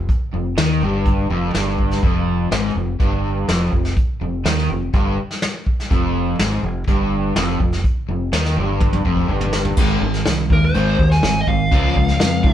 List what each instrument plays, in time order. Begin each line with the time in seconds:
0.09 kick, closed hi-hat
0.33 fingered electric bass F1, overdriven electric guitar F2
0.57 fingered electric bass D#2, overdriven electric guitar D#3, snare, closed hi-hat
0.82 fingered electric bass G1, overdriven electric guitar G2
1.06 kick, closed hi-hat
1.30 fingered electric bass F1, overdriven electric guitar F2
1.54 fingered electric bass G1, overdriven electric guitar G2, snare, closed hi-hat
1.79 kick
1.91 snare
2.03 fingered electric bass F1, overdriven electric guitar F2, kick, closed hi-hat
2.51 fingered electric bass G#1, overdriven electric guitar G#2, snare, closed hi-hat
2.75 fingered electric bass F1, overdriven electric guitar F2
3.00 fingered electric bass G1, overdriven electric guitar G2, kick, closed hi-hat
3.48 fingered electric bass F1, overdriven electric guitar F2, snare, closed hi-hat
3.73 fingered electric bass F1, overdriven electric guitar F2, kick
3.85 snare
3.96 kick, closed hi-hat
4.21 fingered electric bass F1, overdriven electric guitar F2
4.45 fingered electric bass D#2, overdriven electric guitar D#3, snare, closed hi-hat
4.58 snare
4.70 fingered electric bass F1, overdriven electric guitar F2
4.93 fingered electric bass G1, overdriven electric guitar G2, kick, closed hi-hat
5.31 snare
5.42 snare, closed hi-hat
5.67 kick
5.80 snare
5.90 fingered electric bass F1, overdriven electric guitar F2, kick, closed hi-hat
6.39 fingered electric bass G#1, overdriven electric guitar G#2, snare, closed hi-hat
6.63 fingered electric bass F1, overdriven electric guitar F2
6.87 fingered electric bass G1, overdriven electric guitar G2, kick, closed hi-hat
7.36 fingered electric bass F1, overdriven electric guitar F2, snare, closed hi-hat
7.60 fingered electric bass F1, overdriven electric guitar F2, kick
7.72 snare
7.84 kick, closed hi-hat
8.09 fingered electric bass F1, overdriven electric guitar F2
8.32 fingered electric bass D#2, overdriven electric guitar D#3, snare, closed hi-hat
8.45 snare
8.57 fingered electric bass G1, overdriven electric guitar G2
8.80 kick, high tom
8.93 high tom
9.05 fingered electric bass F1, overdriven electric guitar F2, kick
9.17 kick
9.29 fingered electric bass G1, overdriven electric guitar G2, kick
9.41 mid tom
9.53 snare
9.65 floor tom
9.77 fingered electric bass G#1, overdriven electric guitar G#2 D#3 G#3, kick, crash
10.01 fingered electric bass G#1, overdriven electric guitar G#2 D#3
10.14 snare
10.25 fingered electric bass C2, overdriven electric guitar G#2 D#3, snare, closed hi-hat
10.50 fingered electric bass D#2, overdriven electric guitar G#2 D#3, lead electric guitar A#4, kick
10.65 lead electric guitar C5
10.74 fingered electric bass G#1, overdriven electric guitar G#2 D#3 G#3, closed hi-hat
10.99 fingered electric bass D#2, overdriven electric guitar G#2 D#3, kick
11.11 lead electric guitar G#5, snare
11.22 fingered electric bass G#1, overdriven electric guitar G#2 D#3, snare, closed hi-hat
11.41 lead electric guitar D#5
11.47 fingered electric bass G#1, overdriven electric guitar G#2 D#3, lead electric guitar F5, kick
11.71 fingered electric bass C#2, overdriven electric guitar C#3 F3 G#3 C#4, kick, closed hi-hat
11.96 fingered electric bass C#2, overdriven electric guitar C#3 F3 G#3, kick
12.08 snare
12.20 fingered electric bass F2, overdriven electric guitar C#3 F3 G#3, snare, closed hi-hat
12.43 fingered electric bass G#2, overdriven electric guitar C#3 F3 G#3, lead electric guitar D#5, kick